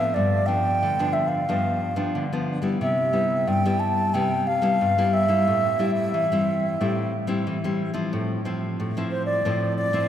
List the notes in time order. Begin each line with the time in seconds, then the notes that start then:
Already playing: A2 F3 B3 D4 E5
0.14 G2 D5
0.47 F3 B3 D4 G5
0.82 D3
0.99 F3 B3 D4
1.13 E5
1.28 F5
1.49 G2 F3 B3 D4
1.96 F3 B3 D4
2.15 D3
2.33 F3 B3 D4
2.62 G3 B3 E4
2.81 C3 E5
3.13 G3 B3 E4
3.47 G2 G5
3.65 G3 B3 E4
3.80 A5
4.14 C3 G3 B3 E4 G5
4.47 F5
4.62 G3 B3 E4
4.81 G2
4.98 G3 B3 E4
5.13 E5
5.28 G3 C4 E4
5.48 A2
5.79 G3 C4 E4
5.95 E5
6.14 E3
6.32 G3 C4 E4
6.80 A2 G3 C4 E4
7.27 G3 C4 E4
7.47 E3
7.64 G3 C4 E4
7.94 F3 C4 E4
8.13 A2
8.45 F3 C4 E4
8.80 A2
8.97 F3 C4 E4
9.11 C5
9.26 D5
9.45 A2 F3 C4 E4
9.77 D5
9.93 F3 C4 E4